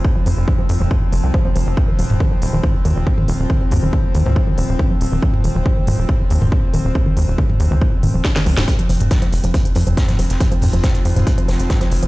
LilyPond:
<<
  \new Staff \with { instrumentName = "Synth drone" } { \clef bass \time 4/4 \key des \major \tempo 4 = 139 <f c'>1~ | <f c'>1~ | <f c'>1~ | <f c'>1~ |
<f c'>1 | <f c'>1~ | <f c'>1 | }
  \new Staff \with { instrumentName = "Synth arpeggio sound" } { \clef bass \time 4/4 \key des \major r16 f16 f16 r16 f16 f16 r16 f16 f16 r16 f16 c'16 f16 f16 f16 r16 | r16 ees16 f16 r16 ees16 f16 r16 ees16 f16 r16 ees16 f16 r16 ees16 f16 r16 | ees16 f16 r16 ees16 f16 r16 ees16 f16 r16 ees16 f16 r16 ees16 f16 r16 ees16 | f16 r16 ees16 f16 r16 ees16 f16 r16 ees16 f16 r16 ees16 f16 r16 ees16 f16 |
r16 ees16 f16 r16 ees16 f16 r16 ees16 f16 r16 ees16 f16 r16 ees16 f16 r16 | r16 f16 f16 r16 f16 f16 r16 f16 f16 r16 f16 f16 r16 f16 f16 r16 | f16 f16 r16 f16 f16 r16 f16 f16 r16 f16 f16 r16 f16 f16 r16 f16 | }
  \new Staff \with { instrumentName = "Analog synth bass" } { \clef bass \time 4/4 \key des \major r8 f,16 f,,16 r8 f,16 ees,,16 r8 f,,16 c,16 r8 f,,16 f,,16 | r8 ees,,16 ees,,16 r8 ees,,16 ees,,16 r8 ees,16 ees,,16 r8 ees,,16 ees,,16 | r8 ees,16 ees,,16 r8 ees,16 des,16 r8 ees,,16 ees,,16 r8 ees,,16 ees,,16 | r8 ees,,16 ees,,16 r8 ees,,16 ees,,16 r8 ees,16 ees,,16 r8 ees,,16 ees,,16 |
r8 ees,16 ees,,16 r8 ees,16 des,16 r8 ees,,16 ees,,16 r8 des,16 ees,,16 | r8 f,,16 f,,16 r8 f,,16 f,,16 r8 f,16 f,,16 r8 f,,16 f,,16 | r8 f,16 f,,16 r8 f,16 ees,,16 r8 f,,16 f,,16 r8 f,,16 f,,16 | }
  \new DrumStaff \with { instrumentName = "Drums" } \drummode { \time 4/4 bd8 hho8 bd8 hho8 bd8 hho8 bd8 hho8 | bd8 hho16 toml16 bd8 hho8 <bd toml>8 hho8 bd16 toml16 hho8 | bd8 <hho toml>8 bd8 hho16 toml16 bd8 hho8 <bd toml>8 hho8 | bd16 toml16 hho8 bd8 <hho toml>8 bd8 hho16 toml16 bd8 hho8 |
<bd toml>8 hho8 bd16 toml16 hho8 bd8 <hho toml>8 <bd sn>16 sn16 hho16 <sn toml>16 | <hh bd>16 hh16 <hh hho>16 <hh toml>16 <hh bd sn>16 hh16 <hh hho>16 hh16 <hh bd toml>16 hh16 <hh hho>16 hh16 <hh bd sn>16 <hh sn toml>16 <hh hho>16 <hh sn>16 | <hh bd>16 hh16 <hho toml>16 hh16 <hh bd sn>16 hh16 <hh hho>16 <hh toml>16 <hh bd>16 hh16 <hh hho sn>16 hh16 <hh bd sn toml>16 <hh sn>16 <hh hho>16 hh16 | }
>>